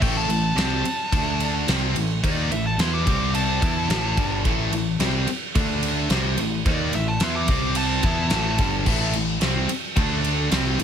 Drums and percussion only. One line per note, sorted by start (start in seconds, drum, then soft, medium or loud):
0.02 kick loud
0.02 crash medium
0.30 ride medium
0.58 snare loud
0.58 ride loud
0.85 ride medium
1.12 kick loud
1.12 ride loud
1.40 ride medium
1.68 snare loud
1.68 ride loud
1.96 ride medium
2.24 kick loud
2.24 ride loud
2.52 ride medium
2.79 snare loud
2.79 ride loud
3.07 kick loud
3.07 ride medium
3.35 ride loud
3.62 kick loud
3.62 ride medium
3.90 snare loud
3.90 ride loud
4.17 kick loud
4.17 ride medium
4.45 kick loud
4.45 ride medium
4.73 ride medium
5.00 snare loud
5.00 ride medium
5.27 ride medium
5.55 kick loud
5.55 ride loud
5.83 ride medium
6.10 snare loud
6.10 ride loud
6.38 ride medium
6.66 kick loud
6.66 ride loud
6.93 ride medium
7.20 snare loud
7.20 ride loud
7.48 kick loud
7.48 ride medium
7.75 ride loud
8.03 kick loud
8.03 ride medium
8.30 snare loud
8.30 ride loud
8.58 kick loud
8.58 ride medium
8.86 kick loud
8.86 crash loud
9.13 ride medium
9.41 snare loud
9.41 ride loud
9.69 ride medium
9.97 kick loud
9.97 ride loud
10.24 ride medium
10.52 snare loud
10.52 ride loud
10.80 ride medium